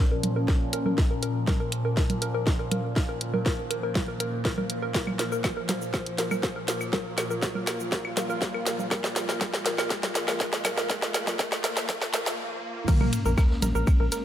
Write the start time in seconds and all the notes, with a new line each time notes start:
Already playing: A#2 F3 A#3 C#4, riser
0.12 A#4
0.23 closed hi-hat, low conga
0.36 A#4
0.48 A#4, kick, snare
0.73 A#4, closed hi-hat
0.86 A#4, low conga
0.98 kick, snare
1.11 A#4
1.23 A#4, closed hi-hat
1.47 A#4, kick, snare, low conga
1.60 A#4
1.72 closed hi-hat
1.85 A#4
1.97 A#4, kick, snare
2.10 closed hi-hat, low conga
2.22 A#4, closed hi-hat
2.35 A#4
2.47 kick, snare
2.59 A#4
2.71 A#4, closed hi-hat, low conga
2.96 A#4, kick, snare
3.09 A#4
3.21 closed hi-hat
3.34 A#4, low conga
3.46 A#4, kick, snare
3.71 A#4, closed hi-hat
3.83 A#4
3.95 kick, snare, low conga
4.08 A#4
4.20 A#4, closed hi-hat
4.45 A#4, kick, snare
4.58 A#4, low conga
4.70 closed hi-hat
4.82 A#4
4.94 F4 A#4, kick, snare, shaker
5.07 low conga, claves
5.19 A#4, snare, closed hi-hat, shaker
5.32 A#4, shaker
5.44 kick, snare, claves, shaker
5.57 A#4
5.69 A#4, snare, closed hi-hat, low conga, shaker
5.82 shaker
5.94 A#4, kick, snare, claves, shaker
6.06 closed hi-hat
6.18 A#4, snare, closed hi-hat, shaker
6.31 A#4, low conga, claves, shaker
6.43 kick, snare, shaker
6.56 A#4
6.68 A#4, snare, closed hi-hat, shaker
6.81 claves, shaker
6.93 A#4, kick, snare, low conga, shaker
7.18 A#4, snare, closed hi-hat, claves, shaker
7.30 A#4, shaker
7.42 kick, snare, shaker
7.55 A#4, low conga
7.67 A#4, snare, closed hi-hat, claves, shaker
7.80 shaker
7.92 A#4, kick, snare, shaker
8.05 claves
8.17 A#4, snare, closed hi-hat, low conga, shaker
8.30 A#4, shaker
8.42 kick, snare, shaker
8.54 A#4, claves
8.66 A#4, snare, closed hi-hat, shaker
8.79 low conga, shaker
8.91 A#4, kick, snare, claves, shaker
9.04 snare
9.16 A#4, snare, closed hi-hat, shaker
9.29 A#4, snare, shaker
9.41 A#4, kick, snare, low conga, claves, shaker
9.54 snare
9.66 A#4, snare, closed hi-hat, shaker
9.78 A#4, snare, claves, shaker
9.90 A#4, kick, snare, shaker
10.03 snare, closed hi-hat, low conga
10.15 A#4, snare, closed hi-hat, shaker
10.28 A#4, snare, claves, shaker
10.40 A#4, kick, snare, shaker
10.53 snare
10.65 A#4, snare, closed hi-hat, low conga, claves, shaker
10.78 A#4, snare, shaker
10.90 A#4, kick, snare, shaker
11.02 snare
11.14 A#4, snare, closed hi-hat, claves, shaker
11.27 snare, low conga, shaker
11.39 A#4, kick, snare, shaker
11.52 snare, claves
11.64 A#4, snare, closed hi-hat, shaker
11.77 snare, closed hi-hat, shaker
11.89 A#4, kick, snare, low conga, shaker
12.02 snare, claves
12.14 A#4, snare, closed hi-hat, shaker
12.26 snare, shaker
12.88 G#3 A#3 C#4 A#4 A#5, kick, crash, ride, sub drop, shaker
13.01 A#1 A#4 A#5, low conga, claves
13.13 closed hi-hat, ride, shaker
13.26 A#1 A#4 A#5, shaker
13.37 A#4 A#5, kick, snare, ride, claves, shaker
13.51 snare
13.62 A#1 A#4 A#5, snare, closed hi-hat, ride, low conga, shaker
13.75 A#1 A#4 A#5, shaker
13.87 kick, ride, claves, shaker
14.00 A#1 A#4 A#5
14.12 A#4 A#5, snare, closed hi-hat, ride, shaker